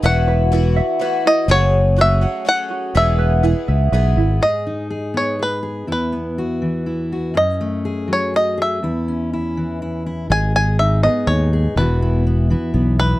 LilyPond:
<<
  \new Staff \with { instrumentName = "Five-string banjo" } { \time 3/4 \key e \major \tempo 4 = 122 fis''4. r4 dis''8 | cis''4 e''4 fis''4 | e''2 r4 | dis''4. cis''8 b'4 |
b'2~ b'8 r8 | dis''4. cis''8 dis''8 e''8~ | e''2~ e''8 r8 | gis''8 gis''8 e''8 dis''8 cis''4 |
b'4 r4. b'8 | }
  \new Staff \with { instrumentName = "Ukulele" } { \time 3/4 \key e \major e''8 b'8 e'8 e''8 b'8 e'8 | fis''4 fis'8 fis''4 fis'8 | e''8 b'8 e'8 e''8 b'8 e'8 | r2. |
r2. | r2. | r2. | r2. |
r2. | }
  \new Staff \with { instrumentName = "Steel-string acoustic guitar" } { \time 3/4 \key e \major << { r2. | r2. | r2. | gis'8 dis'8 gis'4 gis'8 gis'8 |
e'8 b8 fis'4 e'8 fis'8 | cis'8 a8 gis'4 cis'8 gis'8 | e'8 cis'8 e'4 e'8 e'8 | gis'8 gis'8 dis'8 gis'8 dis'8 gis'8 |
<e b e' fis'>8 e'8 b8 e'8 b8 e'8 | } \\ { r2. | r2. | r2. | gis,4. b4. |
e,4. e4. | fis,4. fis4. | e,4. e4. | gis,4. b4. |
e,4. e4. | } >> }
  \new Staff \with { instrumentName = "Twelve-string acoustic guitar" } { \time 3/4 \key e \major <e, b, e b e' fis'>4 <e b e' fis'>4 <e b e' fis'>4 | <fis, cis fis a cis' gis'>4 <fis a cis' gis'>8 <fis a cis' gis'>8 <fis a cis' gis'>4 | <e, b, e gis b gis'>4 <e gis b gis'>4 <e gis b gis'>4 | r2. |
r2. | r2. | r2. | r2. |
r2. | }
  \new Staff \with { instrumentName = "Fingered electric bass" } { \clef bass \time 3/4 \key e \major e,,2 r4 | fis,,2 r4 | e,,4. cis,8 b,,8 gis,,8 | r2. |
r2. | r2. | r2. | gis,,2 dis,4 |
e,,2 b,,4 | }
>>